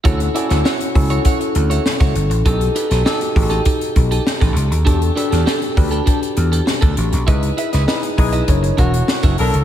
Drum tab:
HH |xxxx-xoxxxxx-xxx|xxxx-xoxxxxx-xxx|xxxx-xoxxxxx-xxx|xxxx-xoxxxxx-xox|
SD |---oo-------oo--|---oo-------oo--|---oo-------o---|---oo-------oo--|
BD |o-----o-o----o--|o-----o-o-o--o--|o-----o-o----o--|o-----o-o-o--o--|